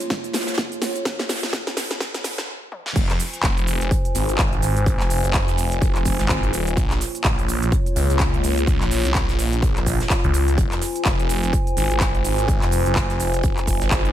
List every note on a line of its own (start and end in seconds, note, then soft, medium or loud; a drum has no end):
0.00 2.45 A#3 medium
0.00 2.45 F4 medium
0.00 2.45 C#5 medium
0.00 closed hi-hat medium
0.00 closed hi-hat soft
0.00 shaker soft
0.10 kick loud
0.10 snare medium
0.10 closed hi-hat medium
0.10 shaker soft
0.24 closed hi-hat medium
0.24 shaker soft
0.33 snare medium
0.33 closed hi-hat medium
0.33 open hi-hat loud
0.33 shaker medium
0.40 snare medium
0.40 closed hi-hat medium
0.47 snare medium
0.47 closed hi-hat medium
0.47 shaker soft
0.54 snare medium
0.54 closed hi-hat medium
0.58 kick loud
0.58 snare loud
0.58 snare medium
0.58 closed hi-hat medium
0.58 shaker soft
0.72 closed hi-hat medium
0.72 shaker soft
0.82 snare medium
0.82 closed hi-hat medium
0.82 open hi-hat loud
0.82 shaker medium
0.96 closed hi-hat medium
0.96 shaker soft
1.05 kick loud
1.05 snare medium
1.05 closed hi-hat medium
1.05 shaker soft
1.19 snare medium
1.19 closed hi-hat soft
1.19 shaker soft
1.28 snare medium
1.28 snare loud
1.28 closed hi-hat medium
1.28 open hi-hat loud
1.28 shaker medium
1.35 snare medium
1.35 closed hi-hat medium
1.43 snare medium
1.43 closed hi-hat medium
1.43 shaker soft
1.48 snare medium
1.48 closed hi-hat medium
1.53 kick loud
1.53 snare loud
1.53 closed hi-hat loud
1.53 shaker soft
1.67 snare medium
1.67 snare soft
1.67 closed hi-hat soft
1.67 shaker soft
1.77 snare medium
1.77 snare loud
1.77 closed hi-hat medium
1.77 open hi-hat loud
1.77 shaker medium
1.91 snare medium
1.91 closed hi-hat medium
1.91 shaker soft
2.00 kick loud
2.00 snare loud
2.00 closed hi-hat medium
2.00 shaker soft
2.14 snare medium
2.14 closed hi-hat medium
2.14 shaker soft
2.24 snare loud
2.24 closed hi-hat medium
2.24 open hi-hat loud
2.24 shaker medium
2.38 snare medium
2.38 closed hi-hat medium
2.38 shaker soft
2.72 high tom medium
2.86 snare medium
2.96 3.18 F1 medium
2.96 14.12 F4 medium
2.96 6.73 C5 medium
2.96 6.73 G#5 medium
2.96 kick loud
2.96 closed hi-hat medium
2.96 crash loud
2.96 shaker soft
3.09 snare medium
3.09 clap soft
3.09 closed hi-hat soft
3.09 shaker soft
3.19 snare soft
3.19 closed hi-hat medium
3.19 open hi-hat loud
3.19 shaker medium
3.34 closed hi-hat medium
3.34 shaker soft
3.43 3.79 F1 medium
3.43 kick loud
3.43 snare loud
3.43 clap loud
3.43 closed hi-hat medium
3.43 shaker soft
3.57 closed hi-hat medium
3.57 shaker soft
3.67 closed hi-hat medium
3.67 open hi-hat medium
3.67 shaker medium
3.81 3.90 F1 loud
3.81 closed hi-hat medium
3.81 closed hi-hat soft
3.81 shaker soft
3.91 kick loud
3.91 closed hi-hat medium
3.91 shaker soft
4.05 closed hi-hat medium
4.05 shaker soft
4.15 4.27 G#1 loud
4.15 closed hi-hat medium
4.15 open hi-hat loud
4.15 shaker medium
4.29 4.61 G#1 loud
4.29 closed hi-hat medium
4.29 shaker soft
4.38 kick loud
4.38 snare loud
4.38 clap loud
4.38 closed hi-hat medium
4.38 shaker soft
4.53 closed hi-hat soft
4.62 4.98 G#1 loud
4.62 closed hi-hat medium
4.62 open hi-hat medium
4.62 shaker medium
4.77 closed hi-hat medium
4.77 shaker soft
4.86 kick loud
4.86 closed hi-hat medium
4.86 shaker soft
5.00 5.22 F1 loud
5.00 snare medium
5.00 clap soft
5.00 closed hi-hat soft
5.00 shaker soft
5.10 closed hi-hat medium
5.10 open hi-hat loud
5.10 shaker medium
5.24 5.46 F#1 medium
5.24 closed hi-hat medium
5.24 shaker soft
5.33 kick loud
5.33 snare loud
5.33 clap loud
5.33 closed hi-hat medium
5.33 shaker soft
5.48 5.80 F1 loud
5.48 snare soft
5.48 closed hi-hat medium
5.48 shaker soft
5.58 closed hi-hat medium
5.58 open hi-hat loud
5.58 shaker medium
5.72 closed hi-hat medium
5.72 shaker soft
5.82 5.93 F#1 loud
5.82 kick loud
5.82 closed hi-hat medium
5.82 shaker soft
5.95 6.17 F1 loud
5.95 clap soft
5.95 closed hi-hat medium
5.95 shaker soft
6.05 kick medium
6.05 closed hi-hat medium
6.05 open hi-hat loud
6.05 shaker medium
6.19 6.51 G#1 loud
6.19 snare medium
6.19 closed hi-hat medium
6.19 shaker soft
6.29 kick loud
6.29 snare loud
6.29 clap loud
6.29 closed hi-hat medium
6.29 shaker soft
6.43 closed hi-hat soft
6.53 6.75 D#1 loud
6.53 closed hi-hat medium
6.53 open hi-hat medium
6.53 shaker medium
6.67 closed hi-hat medium
6.67 shaker soft
6.77 6.99 A#1 loud
6.77 10.54 A#3 medium
6.77 10.54 C#5 medium
6.77 kick loud
6.77 closed hi-hat medium
6.77 shaker soft
6.91 snare soft
6.91 clap soft
6.91 closed hi-hat soft
6.91 shaker soft
7.01 snare soft
7.01 closed hi-hat medium
7.01 open hi-hat loud
7.01 shaker medium
7.15 closed hi-hat medium
7.15 shaker soft
7.24 7.60 A#1 loud
7.24 kick loud
7.24 snare loud
7.24 clap loud
7.24 closed hi-hat medium
7.24 shaker soft
7.39 closed hi-hat medium
7.39 shaker soft
7.48 closed hi-hat medium
7.48 open hi-hat loud
7.48 shaker medium
7.62 7.71 A#1 loud
7.62 closed hi-hat soft
7.62 closed hi-hat medium
7.62 shaker soft
7.72 kick loud
7.72 closed hi-hat medium
7.72 shaker soft
7.86 closed hi-hat medium
7.86 shaker soft
7.96 8.08 C#2 loud
7.96 closed hi-hat medium
7.96 open hi-hat loud
7.96 shaker medium
8.10 8.42 C#2 loud
8.10 closed hi-hat medium
8.10 shaker soft
8.19 kick loud
8.19 snare loud
8.19 clap loud
8.19 closed hi-hat loud
8.19 shaker soft
8.34 closed hi-hat soft
8.43 8.79 C#2 loud
8.43 closed hi-hat medium
8.43 open hi-hat loud
8.43 shaker medium
8.58 closed hi-hat medium
8.58 shaker soft
8.67 kick loud
8.67 closed hi-hat medium
8.67 shaker soft
8.81 9.03 A#1 loud
8.81 snare medium
8.81 clap soft
8.81 closed hi-hat soft
8.81 shaker soft
8.91 closed hi-hat medium
8.91 open hi-hat loud
8.91 shaker medium
9.05 9.27 C2 loud
9.05 closed hi-hat medium
9.05 shaker soft
9.15 kick loud
9.15 snare loud
9.15 clap loud
9.15 closed hi-hat loud
9.15 shaker soft
9.29 9.61 A#1 loud
9.29 snare soft
9.29 closed hi-hat soft
9.29 shaker soft
9.39 closed hi-hat medium
9.39 open hi-hat medium
9.39 shaker medium
9.53 closed hi-hat medium
9.53 shaker soft
9.62 9.74 A#1 loud
9.62 kick loud
9.62 closed hi-hat loud
9.62 shaker soft
9.76 9.85 A#1 loud
9.76 clap soft
9.76 closed hi-hat medium
9.76 shaker soft
9.86 9.98 A#1 medium
9.86 kick medium
9.86 closed hi-hat medium
9.86 open hi-hat loud
9.86 shaker medium
10.00 snare medium
10.00 closed hi-hat medium
10.00 shaker soft
10.10 kick loud
10.10 snare loud
10.10 clap loud
10.10 closed hi-hat medium
10.10 shaker soft
10.24 10.56 C#2 medium
10.24 closed hi-hat soft
10.33 closed hi-hat medium
10.33 open hi-hat loud
10.33 shaker medium
10.48 closed hi-hat medium
10.48 shaker soft
10.58 10.80 F1 loud
10.58 14.12 C5 medium
10.58 14.12 G#5 medium
10.58 kick loud
10.58 closed hi-hat medium
10.58 shaker soft
10.71 snare soft
10.71 clap soft
10.71 closed hi-hat soft
10.71 shaker soft
10.81 snare soft
10.81 closed hi-hat medium
10.81 open hi-hat loud
10.81 shaker medium
10.96 closed hi-hat medium
10.96 shaker soft
11.05 11.41 F1 loud
11.05 kick loud
11.05 snare loud
11.05 clap loud
11.05 closed hi-hat medium
11.05 shaker soft
11.20 closed hi-hat medium
11.20 shaker soft
11.29 closed hi-hat medium
11.29 open hi-hat medium
11.29 shaker medium
11.43 11.51 F1 loud
11.43 closed hi-hat medium
11.43 closed hi-hat soft
11.43 shaker soft
11.53 kick loud
11.53 closed hi-hat medium
11.53 shaker soft
11.67 closed hi-hat medium
11.67 shaker soft
11.77 11.89 G#1 loud
11.77 closed hi-hat medium
11.77 open hi-hat loud
11.77 shaker medium
11.91 12.23 G#1 loud
11.91 closed hi-hat medium
11.91 shaker soft
12.00 kick loud
12.00 snare loud
12.00 clap loud
12.00 closed hi-hat loud
12.00 shaker soft
12.15 closed hi-hat soft
12.24 12.60 G#1 loud
12.24 closed hi-hat medium
12.24 open hi-hat medium
12.24 shaker medium
12.38 closed hi-hat medium
12.38 shaker soft
12.48 kick loud
12.48 closed hi-hat medium
12.48 shaker soft
12.62 12.84 F1 loud
12.62 snare medium
12.62 clap soft
12.62 closed hi-hat soft
12.62 shaker soft
12.71 closed hi-hat medium
12.71 open hi-hat loud
12.71 shaker medium
12.86 13.08 F#1 loud
12.86 closed hi-hat medium
12.86 shaker soft
12.96 kick loud
12.96 snare loud
12.96 clap loud
12.96 closed hi-hat medium
12.96 shaker soft
13.10 13.42 F1 loud
13.10 snare medium
13.10 closed hi-hat medium
13.10 shaker soft
13.20 closed hi-hat medium
13.20 open hi-hat medium
13.20 shaker medium
13.34 closed hi-hat medium
13.34 shaker soft
13.43 13.55 F#1 loud
13.43 kick loud
13.43 closed hi-hat medium
13.43 shaker soft
13.57 13.79 F1 loud
13.57 clap soft
13.57 closed hi-hat medium
13.57 shaker soft
13.67 kick medium
13.67 closed hi-hat medium
13.67 open hi-hat loud
13.67 shaker medium
13.81 14.12 G#1 loud
13.81 snare medium
13.81 closed hi-hat medium
13.81 shaker soft
13.91 kick loud
13.91 snare loud
13.91 clap loud
13.91 closed hi-hat medium
13.91 shaker soft
14.05 closed hi-hat soft